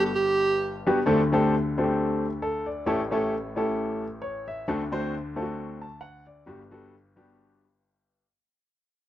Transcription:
Already playing: G1 G2
0.15 G4
0.86 G3 B3 D4 F#4 G4
1.06 D2 D3 A3 C4 D4 G4 A4
1.32 A3 C4 D4 G4 A4
1.77 A3 C4 D4 F#4 A4
1.84 G4
2.42 A4
2.66 D5
2.86 A1 A2 A3 C#4 E4 G4 A4
3.11 A3 C#4 E4 G4 A4
3.56 A3 C#4 E4 G4 A4
4.22 C#5
4.48 E5
4.68 D2 D3 A3 C4 D4 F#4 A4
4.92 A3 C4 D4 F#4 C5
5.36 A3 C4 D4 F4 A4
5.42 F#4
5.82 A5
6.01 F#5
6.27 D5
6.46 G1 G2 G3 B3 D4 F#4 G4
6.71 G3 B3 D4 F#4 A4
7.16 G3 B3 D4 F#4 G4

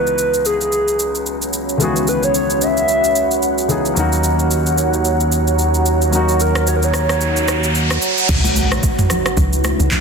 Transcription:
Already playing: C#2 E3 G#3 B3 C#4 D#4 F#4 B4 C#5 F#5 B5
0.07 shaker
0.18 shaker
0.34 shaker
0.45 G#4, shaker
0.61 G#4, shaker
0.72 shaker
0.88 shaker
0.99 shaker
1.15 shaker
1.26 shaker
1.42 shaker
1.53 shaker
1.69 shaker
1.78 C#2 E3 G#3 B3 F#4, shaker
1.82 D#3 G#4
1.96 shaker
2.07 B4, shaker
2.23 C#5, shaker
2.35 shaker
2.50 shaker
2.61 E5, shaker
2.77 shaker
2.88 shaker
3.04 shaker
3.16 shaker
3.31 shaker
3.42 shaker
3.58 shaker
3.68 C#2 E3 G#3 B3 D#4 G#4, shaker
3.85 shaker
3.94 D#2 F#3 A#3 C#4 C#5 A#5, shaker
3.98 D#4 F#4
4.12 shaker
4.24 shaker
4.39 shaker
4.51 shaker
4.66 shaker
4.78 shaker
4.93 shaker
5.05 shaker
5.20 shaker
5.32 shaker
5.47 shaker
5.59 shaker
5.74 shaker
5.86 shaker
6.02 shaker
6.10 F#3 A#3 C#4 F#4, riser, shaker
6.15 D#4 F#4
6.29 shaker
6.40 A#4, shaker
6.55 cross-stick, shaker
6.67 C#5, shaker
6.76 A#4
6.83 C#5, shaker
6.94 cross-stick, shaker
7.09 cross-stick, shaker
7.21 shaker
7.37 shaker
7.48 cross-stick, shaker
7.64 shaker
7.75 shaker
7.91 cross-stick, shaker
8.02 shaker
8.18 shaker
8.29 C#2 C#3 C#4 D#4 E4 F#4 B4, kick, crash, impact, shaker
8.44 high conga, shaker
8.55 high conga, shaker
8.72 B1, cross-stick, high conga, shaker
8.83 kick, shaker
8.99 mid tom, high conga, shaker
9.10 cross-stick, low conga, shaker
9.26 cross-stick, shaker
9.37 C#2, kick, low conga, shaker
9.53 shaker
9.64 cross-stick, high conga, shaker
9.80 C#2, high conga, shaker
9.91 kick, clap, low conga, shaker

